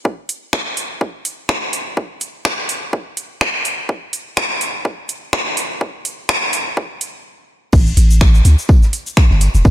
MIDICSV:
0, 0, Header, 1, 3, 480
1, 0, Start_track
1, 0, Tempo, 480000
1, 51, Time_signature, 4, 2, 24, 8
1, 9705, End_track
2, 0, Start_track
2, 0, Title_t, "Sub bass"
2, 0, Program_c, 0, 38
2, 7730, Note_on_c, 0, 33, 96
2, 7925, Note_off_c, 0, 33, 0
2, 7970, Note_on_c, 0, 33, 90
2, 8414, Note_off_c, 0, 33, 0
2, 8450, Note_on_c, 0, 38, 83
2, 8557, Note_off_c, 0, 38, 0
2, 9306, Note_on_c, 0, 31, 83
2, 9487, Note_off_c, 0, 31, 0
2, 9546, Note_on_c, 0, 28, 96
2, 9628, Note_off_c, 0, 28, 0
2, 9650, Note_on_c, 0, 33, 101
2, 9705, Note_off_c, 0, 33, 0
2, 9705, End_track
3, 0, Start_track
3, 0, Title_t, "Drums"
3, 51, Note_on_c, 9, 36, 117
3, 151, Note_off_c, 9, 36, 0
3, 290, Note_on_c, 9, 46, 87
3, 390, Note_off_c, 9, 46, 0
3, 530, Note_on_c, 9, 26, 84
3, 531, Note_on_c, 9, 36, 112
3, 630, Note_off_c, 9, 26, 0
3, 631, Note_off_c, 9, 36, 0
3, 771, Note_on_c, 9, 46, 88
3, 871, Note_off_c, 9, 46, 0
3, 1011, Note_on_c, 9, 36, 117
3, 1111, Note_off_c, 9, 36, 0
3, 1250, Note_on_c, 9, 46, 94
3, 1350, Note_off_c, 9, 46, 0
3, 1490, Note_on_c, 9, 26, 85
3, 1490, Note_on_c, 9, 36, 118
3, 1590, Note_off_c, 9, 26, 0
3, 1590, Note_off_c, 9, 36, 0
3, 1730, Note_on_c, 9, 46, 98
3, 1830, Note_off_c, 9, 46, 0
3, 1970, Note_on_c, 9, 36, 115
3, 2070, Note_off_c, 9, 36, 0
3, 2211, Note_on_c, 9, 46, 87
3, 2311, Note_off_c, 9, 46, 0
3, 2450, Note_on_c, 9, 26, 83
3, 2450, Note_on_c, 9, 36, 112
3, 2550, Note_off_c, 9, 26, 0
3, 2550, Note_off_c, 9, 36, 0
3, 2690, Note_on_c, 9, 46, 90
3, 2790, Note_off_c, 9, 46, 0
3, 2930, Note_on_c, 9, 36, 114
3, 3030, Note_off_c, 9, 36, 0
3, 3170, Note_on_c, 9, 46, 90
3, 3270, Note_off_c, 9, 46, 0
3, 3410, Note_on_c, 9, 26, 83
3, 3410, Note_on_c, 9, 36, 124
3, 3510, Note_off_c, 9, 26, 0
3, 3510, Note_off_c, 9, 36, 0
3, 3650, Note_on_c, 9, 46, 89
3, 3750, Note_off_c, 9, 46, 0
3, 3890, Note_on_c, 9, 36, 110
3, 3990, Note_off_c, 9, 36, 0
3, 4130, Note_on_c, 9, 46, 88
3, 4230, Note_off_c, 9, 46, 0
3, 4370, Note_on_c, 9, 26, 86
3, 4370, Note_on_c, 9, 36, 109
3, 4470, Note_off_c, 9, 26, 0
3, 4470, Note_off_c, 9, 36, 0
3, 4611, Note_on_c, 9, 46, 90
3, 4711, Note_off_c, 9, 46, 0
3, 4850, Note_on_c, 9, 36, 114
3, 4950, Note_off_c, 9, 36, 0
3, 5090, Note_on_c, 9, 46, 90
3, 5190, Note_off_c, 9, 46, 0
3, 5330, Note_on_c, 9, 26, 87
3, 5330, Note_on_c, 9, 36, 117
3, 5430, Note_off_c, 9, 26, 0
3, 5430, Note_off_c, 9, 36, 0
3, 5570, Note_on_c, 9, 46, 96
3, 5670, Note_off_c, 9, 46, 0
3, 5810, Note_on_c, 9, 36, 114
3, 5910, Note_off_c, 9, 36, 0
3, 6050, Note_on_c, 9, 46, 92
3, 6150, Note_off_c, 9, 46, 0
3, 6290, Note_on_c, 9, 26, 93
3, 6290, Note_on_c, 9, 36, 112
3, 6390, Note_off_c, 9, 26, 0
3, 6390, Note_off_c, 9, 36, 0
3, 6530, Note_on_c, 9, 46, 91
3, 6630, Note_off_c, 9, 46, 0
3, 6770, Note_on_c, 9, 36, 123
3, 6870, Note_off_c, 9, 36, 0
3, 7010, Note_on_c, 9, 46, 90
3, 7110, Note_off_c, 9, 46, 0
3, 7724, Note_on_c, 9, 54, 91
3, 7730, Note_on_c, 9, 36, 123
3, 7730, Note_on_c, 9, 49, 104
3, 7824, Note_off_c, 9, 54, 0
3, 7830, Note_off_c, 9, 36, 0
3, 7830, Note_off_c, 9, 49, 0
3, 7867, Note_on_c, 9, 69, 31
3, 7967, Note_off_c, 9, 69, 0
3, 7970, Note_on_c, 9, 54, 68
3, 7971, Note_on_c, 9, 46, 92
3, 8070, Note_off_c, 9, 54, 0
3, 8071, Note_off_c, 9, 46, 0
3, 8107, Note_on_c, 9, 69, 56
3, 8206, Note_off_c, 9, 69, 0
3, 8209, Note_on_c, 9, 54, 87
3, 8210, Note_on_c, 9, 26, 94
3, 8210, Note_on_c, 9, 36, 118
3, 8218, Note_on_c, 9, 38, 119
3, 8309, Note_off_c, 9, 54, 0
3, 8310, Note_off_c, 9, 26, 0
3, 8310, Note_off_c, 9, 36, 0
3, 8318, Note_off_c, 9, 38, 0
3, 8346, Note_on_c, 9, 69, 45
3, 8444, Note_on_c, 9, 54, 64
3, 8446, Note_off_c, 9, 69, 0
3, 8450, Note_on_c, 9, 46, 90
3, 8451, Note_on_c, 9, 38, 39
3, 8544, Note_off_c, 9, 54, 0
3, 8550, Note_off_c, 9, 46, 0
3, 8551, Note_off_c, 9, 38, 0
3, 8586, Note_on_c, 9, 69, 54
3, 8686, Note_off_c, 9, 69, 0
3, 8686, Note_on_c, 9, 54, 90
3, 8690, Note_on_c, 9, 36, 120
3, 8786, Note_off_c, 9, 54, 0
3, 8790, Note_off_c, 9, 36, 0
3, 8826, Note_on_c, 9, 69, 45
3, 8833, Note_on_c, 9, 38, 51
3, 8926, Note_off_c, 9, 69, 0
3, 8930, Note_on_c, 9, 46, 90
3, 8933, Note_off_c, 9, 38, 0
3, 8933, Note_on_c, 9, 54, 72
3, 9030, Note_off_c, 9, 46, 0
3, 9033, Note_off_c, 9, 54, 0
3, 9066, Note_on_c, 9, 69, 57
3, 9166, Note_off_c, 9, 69, 0
3, 9168, Note_on_c, 9, 38, 118
3, 9170, Note_on_c, 9, 26, 92
3, 9170, Note_on_c, 9, 36, 124
3, 9172, Note_on_c, 9, 54, 98
3, 9268, Note_off_c, 9, 38, 0
3, 9270, Note_off_c, 9, 26, 0
3, 9270, Note_off_c, 9, 36, 0
3, 9272, Note_off_c, 9, 54, 0
3, 9308, Note_on_c, 9, 38, 53
3, 9408, Note_off_c, 9, 38, 0
3, 9409, Note_on_c, 9, 38, 48
3, 9411, Note_on_c, 9, 46, 92
3, 9413, Note_on_c, 9, 54, 67
3, 9509, Note_off_c, 9, 38, 0
3, 9511, Note_off_c, 9, 46, 0
3, 9513, Note_off_c, 9, 54, 0
3, 9543, Note_on_c, 9, 38, 39
3, 9547, Note_on_c, 9, 69, 55
3, 9643, Note_off_c, 9, 38, 0
3, 9647, Note_off_c, 9, 69, 0
3, 9648, Note_on_c, 9, 54, 78
3, 9650, Note_on_c, 9, 36, 118
3, 9705, Note_off_c, 9, 36, 0
3, 9705, Note_off_c, 9, 54, 0
3, 9705, End_track
0, 0, End_of_file